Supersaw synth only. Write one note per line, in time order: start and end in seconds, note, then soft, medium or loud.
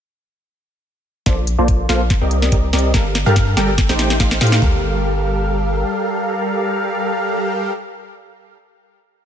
1.26 1.45 A#3 medium
1.26 1.45 F4 medium
1.26 1.45 A4 medium
1.26 1.45 C5 medium
1.26 1.45 D5 loud
1.59 1.87 A#3 medium
1.59 1.87 F4 medium
1.59 1.87 A4 medium
1.59 1.87 C5 medium
1.59 1.87 D5 loud
1.89 2.02 A#3 medium
1.89 2.02 F4 medium
1.89 2.02 A4 medium
1.89 2.02 C5 medium
1.89 2.02 F5 loud
2.21 2.50 C4 medium
2.21 2.50 G4 medium
2.21 2.50 A#4 medium
2.21 2.50 D5 medium
2.21 2.50 D#5 loud
2.52 2.70 C4 medium
2.52 2.70 G4 medium
2.52 2.70 A#4 medium
2.52 2.70 D5 medium
2.52 2.70 D#5 medium
2.73 2.92 C4 medium
2.73 2.92 G4 medium
2.73 2.92 A#4 medium
2.73 2.92 D5 medium
2.73 2.92 D#5 medium
2.94 3.13 G3 medium
2.94 3.13 G4 medium
2.94 3.13 A4 medium
2.94 3.13 A#4 medium
2.94 3.13 F5 loud
3.26 3.55 G3 medium
3.26 3.55 G4 medium
3.26 3.55 A4 medium
3.26 3.55 A#4 medium
3.26 3.55 F5 loud
3.57 3.70 G3 medium
3.57 3.70 G4 medium
3.57 3.70 A4 medium
3.57 3.70 A#4 medium
3.57 3.70 G5 loud
3.89 4.18 A3 medium
3.89 4.18 D#4 medium
3.89 4.18 G4 medium
3.89 4.18 C5 medium
3.89 4.18 G5 loud
4.20 4.38 A3 medium
4.20 4.38 D#4 medium
4.20 4.38 G4 medium
4.20 4.38 C5 medium
4.20 4.38 F5 medium
4.41 4.60 A3 medium
4.41 4.60 D#4 medium
4.41 4.60 G4 medium
4.41 4.60 C5 medium
4.41 4.60 F5 medium
4.62 7.72 G3 medium
4.62 7.72 G4 medium
4.62 7.72 A4 medium
4.62 7.72 A#4 medium
4.62 7.72 F5 medium